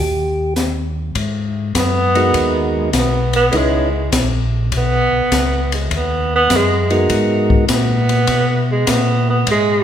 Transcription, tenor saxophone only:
1.78 2.73 B3 medium
2.78 2.94 G#3 soft
2.98 3.35 B3 medium
3.36 3.58 B3 medium
3.57 4.15 G#3 medium
4.77 5.71 B3 loud
5.74 5.90 G#3 soft
5.96 6.34 B3 medium
6.35 6.58 B3 medium
6.56 7.13 G#3 medium
7.74 8.67 B3 medium
8.72 8.92 G#3 medium
8.90 9.29 B3 medium
9.30 9.47 B3 medium
9.51 9.84 G#3 medium

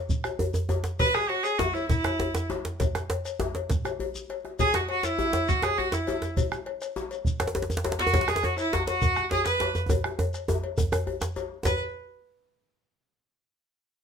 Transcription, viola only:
1.00 1.16 B4 loud
1.15 1.30 G#4 loud
1.29 1.45 F#4 loud
1.43 1.60 G#4 loud
1.58 1.75 F#4 medium
1.73 1.88 E4 medium
1.88 2.45 E4 medium
4.60 4.77 G#4 loud
4.75 4.89 F#4 loud
4.90 5.06 F#4 loud
5.05 5.50 E4 loud
5.48 5.65 F#4 loud
5.63 5.79 G#4 loud
5.78 5.94 F#4 medium
5.93 6.26 E4 medium
7.99 8.30 F#4 medium
8.29 8.46 G#4 medium
8.44 8.58 F#4 medium
8.59 8.75 E4 loud
8.73 8.87 F#4 medium
8.87 9.29 F#4 loud
9.31 9.45 G#4 loud
9.46 9.77 B4 medium
11.65 11.79 B4 medium

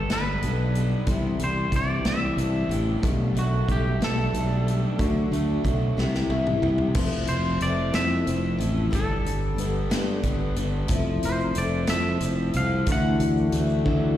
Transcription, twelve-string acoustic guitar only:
0.09 0.41 G3 medium
0.09 0.41 B3 medium
0.09 0.42 D4 medium
0.09 0.43 A4 medium
0.42 0.75 G3 medium
0.42 0.76 B3 medium
0.42 0.75 D4 medium
0.42 0.74 A4 medium
0.75 1.08 B3 soft
0.75 1.08 D4 soft
0.75 1.08 A4 soft
1.08 1.41 C3 medium
1.08 1.41 E3 medium
1.08 1.41 C4 loud
1.08 1.41 D4 medium
1.08 1.40 G4 medium
1.41 1.73 C4 soft
1.41 1.74 D4 soft
1.41 1.74 G4 soft
1.74 2.06 E3 medium
1.74 2.05 C4 medium
1.74 2.05 D4 medium
1.74 2.04 G4 medium
2.06 2.40 C3 soft
2.06 2.37 E3 medium
2.06 2.38 C4 medium
2.06 2.39 D4 medium
2.06 2.38 G4 medium
2.38 2.71 E3 medium
2.38 2.72 C4 medium
2.38 2.71 D4 medium
2.38 2.69 G4 medium
2.71 3.04 C4 soft
2.71 3.04 D4 soft
2.71 3.04 G4 soft
3.03 3.36 B2 medium
3.03 3.37 G3 medium
3.03 3.37 A3 medium
3.03 3.36 D4 medium
3.03 3.37 G4 medium
3.37 3.69 A3 soft
3.37 3.70 D4 soft
3.69 4.02 G3 medium
3.69 4.01 A3 medium
3.69 4.01 D4 medium
3.69 4.01 G4 medium
4.02 4.35 B2 medium
4.02 4.33 G3 soft
4.02 4.35 A3 medium
4.02 4.35 D4 medium
4.02 4.35 G4 medium
4.34 4.67 G3 medium
4.34 4.68 A3 medium
4.34 4.68 D4 medium
4.34 4.66 G4 medium
4.67 4.99 A3 soft
4.67 4.99 D4 soft
4.67 5.00 G4 soft
4.99 5.32 D3 medium
4.99 5.33 F#3 medium
4.99 5.33 A3 medium
4.99 5.32 D4 loud
4.99 5.31 F#4 medium
5.32 5.63 A3 soft
5.32 5.64 D4 medium
5.32 5.65 F#4 medium
5.64 5.97 F#3 medium
5.64 5.97 A3 medium
5.64 5.97 D4 medium
5.64 5.96 F#4 medium
5.97 6.31 C3 medium
5.97 6.29 E3 medium
5.97 6.30 A#3 medium
5.97 6.30 E4 medium
5.97 6.30 G4 medium
6.30 6.63 E3 medium
6.30 6.64 A#3 medium
6.30 6.63 E4 medium
6.30 6.63 G4 medium
6.64 6.96 A#3 soft
6.64 6.96 E4 soft
6.64 6.96 G4 medium
6.96 7.59 F3 medium
6.96 7.61 C4 medium
6.96 7.61 E4 loud
6.96 7.63 A4 medium
7.60 7.92 F3 medium
7.60 7.92 C4 medium
7.60 7.91 E4 medium
7.60 7.91 A4 medium
7.92 8.60 F3 medium
7.92 8.60 C4 medium
7.92 8.59 E4 medium
7.92 8.59 A4 medium
8.59 8.91 C4 soft
8.59 8.92 E4 soft
8.59 8.92 A4 medium
8.90 9.55 G3 medium
8.90 9.57 B3 medium
8.90 9.57 D4 medium
8.90 9.59 A4 medium
9.56 9.90 G3 medium
9.56 9.89 B3 medium
9.56 9.89 D4 medium
9.56 9.89 A4 medium
9.90 10.57 G3 medium
9.90 10.57 B3 medium
9.90 10.56 D4 medium
9.90 10.56 A4 medium
10.56 10.89 B3 soft
10.56 10.90 D4 medium
10.56 10.89 A4 medium
10.88 11.52 F3 medium
10.88 11.54 C4 loud
10.88 11.56 E4 loud
10.88 11.56 A4 loud
11.54 11.88 F3 medium
11.54 11.88 C4 medium
11.54 11.88 E4 medium
11.54 11.87 A4 medium
11.88 12.55 F3 medium
11.88 12.55 C4 medium
11.88 12.55 E4 medium
11.88 12.54 A4 medium
12.55 12.88 C4 soft
12.55 12.88 A4 medium
12.87 13.53 D3 medium
12.87 13.53 E3 medium
12.87 13.53 A3 medium
12.87 13.54 E4 medium
12.87 13.54 F#4 loud
13.54 13.86 E3 medium
13.54 13.86 A3 medium
13.54 13.85 E4 medium
13.54 13.85 F#4 medium
13.86 14.17 D3 medium
13.86 14.17 E3 medium
13.86 14.17 A3 medium
13.86 14.17 E4 medium
13.86 14.17 F#4 medium

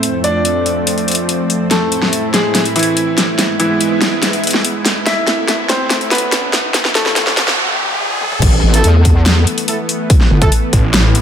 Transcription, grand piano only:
0.00 0.16 C4 medium
0.00 0.16 C5 loud
0.24 1.63 D4 medium
0.24 1.63 D5 medium
1.71 2.26 A3 medium
1.71 2.26 A4 loud
2.34 2.61 G#3 medium
2.34 2.61 G#4 medium
2.76 3.51 E3 medium
2.76 3.51 E4 loud
3.60 4.98 E3 medium
3.60 4.98 E4 medium
5.07 5.61 E4 medium
5.07 5.61 E5 loud
5.69 5.96 C4 medium
5.69 5.96 C5 medium
6.11 6.87 B3 medium
6.11 6.87 B4 loud
6.95 7.58 A3 medium
6.95 7.58 A4 medium

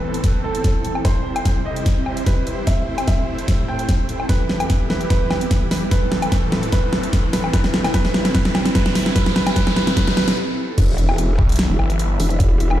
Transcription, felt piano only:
0.00 0.36 B4 medium
0.44 0.97 A4 medium
1.05 1.58 C5 medium
1.66 2.19 D#5 medium
2.27 2.47 B4 medium
2.67 2.88 E5 medium
3.08 3.61 E5 medium
3.68 4.22 G5 medium
4.29 4.82 B4 medium
4.90 5.09 B4 medium
5.10 5.63 B4 medium
5.71 5.90 B4 medium
5.91 6.44 B4 medium
6.52 6.71 B4 medium
6.72 7.26 B4 loud
7.33 7.52 B4 medium
7.54 7.93 B4 loud
7.94 8.33 B4 loud
8.34 8.74 B4 loud
8.75 9.14 B4 loud
9.16 9.34 B4 loud
9.36 9.55 B4 loud
9.56 9.75 B4 loud
9.76 9.95 B4 loud
9.97 10.15 B4 loud
10.17 10.36 B4 loud

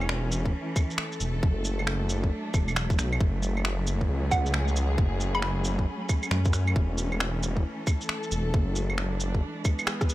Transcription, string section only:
0.00 1.43 E3 medium
0.00 9.43 A3 medium
0.00 1.43 C#4 medium
0.47 3.20 A4 medium
1.43 6.76 F#3 medium
2.03 3.21 D4 medium
3.79 6.76 G#4 medium
4.42 8.54 C#4 medium
6.76 8.54 E3 medium
7.58 9.43 A4 medium
8.54 9.43 F#3 medium
8.95 9.81 D4 medium
9.43 10.14 E3 medium
9.52 10.14 G#3 medium
9.62 10.14 B3 medium
9.84 10.14 G#4 medium

